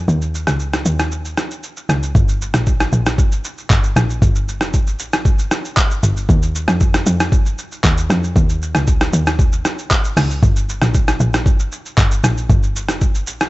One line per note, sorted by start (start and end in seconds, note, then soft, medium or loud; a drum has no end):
0.08 0.46 D#2 loud
0.08 shaker medium
0.22 shaker medium
0.35 shaker medium
0.47 0.84 C#2 medium
0.47 cross-stick medium
0.47 shaker medium
0.59 shaker medium
0.73 cross-stick medium
0.73 shaker medium
0.85 1.36 D#2 medium
0.85 shaker medium
0.99 cross-stick medium
0.99 shaker medium
1.11 shaker medium
1.25 shaker medium
1.37 cross-stick medium
1.37 shaker medium
1.51 shaker soft
1.63 shaker medium
1.77 shaker medium
1.89 2.14 C#2 medium
1.89 cross-stick medium
1.89 shaker medium
2.03 shaker medium
2.15 2.53 G1 loud
2.15 kick loud
2.15 shaker medium
2.28 shaker medium
2.42 shaker medium
2.54 2.91 A#1 medium
2.54 cross-stick medium
2.54 shaker medium
2.66 kick medium
2.66 shaker medium
2.80 cross-stick loud
2.80 shaker medium
2.92 3.18 A#1 medium
2.92 shaker loud
3.06 cross-stick loud
3.06 shaker medium
3.18 kick loud
3.18 shaker medium
3.32 shaker medium
3.44 shaker loud
3.58 shaker soft
3.70 3.95 G1 medium
3.70 kick loud
3.70 clap medium
3.70 shaker medium
3.84 shaker medium
3.96 4.21 A#1 loud
3.96 cross-stick medium
3.96 shaker loud
4.10 shaker medium
4.22 4.63 G1 loud
4.22 kick loud
4.22 shaker medium
4.35 shaker medium
4.48 shaker medium
4.61 5.01 F1 medium
4.61 cross-stick medium
4.61 shaker medium
4.73 kick medium
4.73 shaker medium
4.87 shaker medium
4.99 5.49 A#1 loud
4.99 shaker loud
5.13 cross-stick loud
5.13 shaker medium
5.25 kick loud
5.25 shaker medium
5.39 shaker medium
5.51 cross-stick loud
5.51 shaker medium
5.65 shaker medium
5.77 kick loud
5.77 clap loud
5.77 shaker medium
5.90 shaker medium
6.03 6.28 G1 medium
6.03 shaker medium
6.17 shaker medium
6.29 6.67 D#2 loud
6.29 kick loud
6.29 shaker medium
6.42 shaker medium
6.55 shaker medium
6.68 7.05 F2 loud
6.68 cross-stick medium
6.68 shaker medium
6.80 kick loud
6.80 shaker medium
6.94 cross-stick loud
6.94 shaker medium
7.06 7.31 F2 medium
7.06 shaker loud
7.20 cross-stick loud
7.20 shaker medium
7.32 kick loud
7.32 shaker medium
7.46 shaker medium
7.58 shaker medium
7.72 shaker medium
7.84 8.09 D#2 loud
7.84 kick medium
7.84 clap loud
7.84 shaker medium
7.97 shaker medium
8.10 8.35 F2 loud
8.10 cross-stick medium
8.10 shaker loud
8.24 shaker medium
8.36 8.74 D#2 loud
8.36 kick loud
8.36 shaker medium
8.49 shaker medium
8.62 shaker medium
8.75 9.12 C#2 medium
8.75 cross-stick medium
8.75 shaker medium
8.87 kick medium
8.87 shaker medium
9.01 cross-stick loud
9.01 shaker medium
9.13 9.63 D#2 medium
9.13 shaker loud
9.27 cross-stick loud
9.27 shaker medium
9.39 kick loud
9.39 shaker medium
9.52 shaker medium
9.65 cross-stick loud
9.65 shaker loud
9.78 shaker medium
9.91 kick medium
9.91 clap loud
9.91 shaker medium
10.04 shaker medium
10.17 10.42 C#2 loud
10.17 cross-stick medium
10.17 open hi-hat medium
10.17 shaker loud
10.30 shaker medium
10.43 10.81 G1 loud
10.43 kick loud
10.43 shaker medium
10.56 shaker medium
10.69 shaker medium
10.82 11.19 A#1 medium
10.82 cross-stick medium
10.82 shaker medium
10.94 kick medium
10.94 shaker medium
11.08 cross-stick loud
11.08 shaker medium
11.20 11.45 A#1 medium
11.20 shaker loud
11.34 cross-stick loud
11.34 shaker medium
11.46 kick loud
11.46 shaker medium
11.59 shaker medium
11.72 shaker medium
11.85 shaker medium
11.98 12.23 G1 medium
11.98 kick loud
11.98 clap loud
11.98 shaker medium
12.11 shaker medium
12.24 12.49 A#1 medium
12.24 cross-stick medium
12.24 shaker loud
12.37 shaker medium
12.50 12.90 G1 loud
12.50 kick loud
12.50 shaker medium
12.63 shaker medium
12.76 shaker medium
12.89 13.29 F1 medium
12.89 cross-stick medium
12.89 shaker medium
13.01 kick medium
13.01 shaker medium
13.15 shaker medium
13.27 13.49 A#1 loud
13.27 shaker loud
13.40 cross-stick loud
13.40 shaker medium